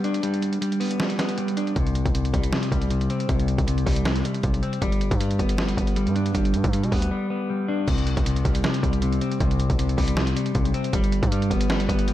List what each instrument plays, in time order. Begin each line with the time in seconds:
Already playing: clean electric guitar G3 B3
0.04 clean electric guitar D4, closed hi-hat
0.14 closed hi-hat
0.23 clean electric guitar G3, closed hi-hat
0.34 closed hi-hat
0.42 closed hi-hat
0.53 closed hi-hat
0.61 clean electric guitar G3, closed hi-hat
0.72 closed hi-hat
0.80 clean electric guitar B3, closed hi-hat, open hi-hat
0.91 closed hi-hat
1.00 clean electric guitar G3, snare
1.10 closed hi-hat
1.19 clean electric guitar B3, snare, closed hi-hat
1.29 closed hi-hat
1.38 clean electric guitar G3, closed hi-hat
1.48 closed hi-hat
1.57 clean electric guitar D4, closed hi-hat
1.67 closed hi-hat
1.76 808-style bass C2, clean electric guitar C3, kick, closed hi-hat
1.87 closed hi-hat
1.95 closed hi-hat
2.05 808-style bass C2, kick, closed hi-hat
2.14 clean electric guitar C3, closed hi-hat
2.25 closed hi-hat
2.34 808-style bass C2, clean electric guitar G3, kick, closed hi-hat
2.43 closed hi-hat
2.53 clean electric guitar C3, snare
2.63 closed hi-hat
2.72 808-style bass C2, clean electric guitar G3, kick, closed hi-hat
2.82 closed hi-hat
2.91 clean electric guitar C3, closed hi-hat
3.01 closed hi-hat
3.10 clean electric guitar C4, closed hi-hat
3.20 closed hi-hat
3.29 808-style bass C2, clean electric guitar C3, kick, closed hi-hat
3.40 closed hi-hat
3.48 closed hi-hat
3.58 808-style bass C2, kick, closed hi-hat
3.67 clean electric guitar C3, closed hi-hat
3.78 closed hi-hat
3.86 808-style bass C2, clean electric guitar G3, kick, open hi-hat
3.96 closed hi-hat
4.05 clean electric guitar C3, snare
4.16 closed hi-hat
4.25 clean electric guitar G3, closed hi-hat
4.34 closed hi-hat
4.43 808-style bass B1, clean electric guitar C3, kick, closed hi-hat
4.54 closed hi-hat
4.63 clean electric guitar C4, closed hi-hat
4.73 closed hi-hat
4.81 808-style bass G1, clean electric guitar G3, kick, closed hi-hat
4.92 closed hi-hat
5.01 closed hi-hat
5.11 808-style bass G2, kick, closed hi-hat
5.20 clean electric guitar G3, closed hi-hat
5.31 closed hi-hat
5.39 808-style bass G1, clean electric guitar B3, kick, closed hi-hat
5.49 closed hi-hat
5.58 clean electric guitar G3, snare
5.68 closed hi-hat
5.77 808-style bass G1, clean electric guitar B3, kick, closed hi-hat
5.87 closed hi-hat
5.96 clean electric guitar G3, closed hi-hat
6.07 808-style bass G2, closed hi-hat
6.16 clean electric guitar D4, closed hi-hat
6.26 closed hi-hat
6.35 808-style bass G1, clean electric guitar G3, kick, closed hi-hat
6.45 closed hi-hat
6.54 808-style bass G2, closed hi-hat
6.64 808-style bass G2, kick, closed hi-hat
6.73 clean electric guitar G3, closed hi-hat
6.83 808-style bass B2, closed hi-hat
6.92 808-style bass D2, clean electric guitar B3, kick, closed hi-hat, open hi-hat
7.02 closed hi-hat
7.11 clean electric guitar G3
7.30 clean electric guitar B3
7.50 clean electric guitar G3
7.68 clean electric guitar D4
7.88 808-style bass C2, clean electric guitar C3, kick, closed hi-hat, crash
7.98 closed hi-hat
8.07 closed hi-hat
8.17 808-style bass C2, kick, closed hi-hat
8.26 clean electric guitar C3, closed hi-hat
8.36 closed hi-hat
8.45 808-style bass C2, clean electric guitar G3, kick, closed hi-hat
8.55 closed hi-hat
8.64 clean electric guitar C3, snare
8.74 closed hi-hat
8.83 808-style bass C2, clean electric guitar G3, kick, closed hi-hat
8.93 closed hi-hat
9.02 clean electric guitar C3, closed hi-hat
9.13 closed hi-hat
9.21 clean electric guitar C4, closed hi-hat
9.32 closed hi-hat
9.40 808-style bass C2, clean electric guitar C3, kick, closed hi-hat
9.51 closed hi-hat
9.60 closed hi-hat
9.70 808-style bass C2, kick, closed hi-hat
9.78 clean electric guitar C3, closed hi-hat
9.89 closed hi-hat
9.97 808-style bass C2, clean electric guitar G3, kick, open hi-hat
10.08 closed hi-hat
10.17 clean electric guitar C3, snare
10.27 closed hi-hat
10.36 clean electric guitar G3, closed hi-hat
10.46 closed hi-hat
10.55 808-style bass B1, clean electric guitar C3, kick, closed hi-hat
10.65 closed hi-hat
10.74 clean electric guitar C4, closed hi-hat
10.84 closed hi-hat
10.93 808-style bass G1, clean electric guitar G3, kick, closed hi-hat
11.04 closed hi-hat
11.12 closed hi-hat
11.23 808-style bass G2, kick, closed hi-hat
11.32 clean electric guitar G3, closed hi-hat
11.42 closed hi-hat
11.50 808-style bass G1, clean electric guitar B3, kick, closed hi-hat
11.61 closed hi-hat
11.70 clean electric guitar G3, snare
11.80 closed hi-hat
11.89 808-style bass G1, clean electric guitar B3, kick, closed hi-hat
11.99 closed hi-hat
12.08 clean electric guitar G3, closed hi-hat